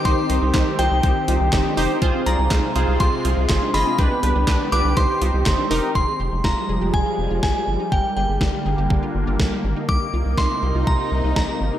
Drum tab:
HH |xxxxxxxo|xxxxxxxo|xxxxxxxo|--------|
CP |--x---x-|--x---x-|--x---x-|--------|
SD |--o---o-|--o---o-|--o---o-|--o---o-|
BD |o-o-o-o-|o-o-o-o-|o-o-o-o-|o-o-o-o-|

HH |--------|--------|
CP |--------|--------|
SD |--o---o-|--o---o-|
BD |o-o-o-o-|o-o-o-o-|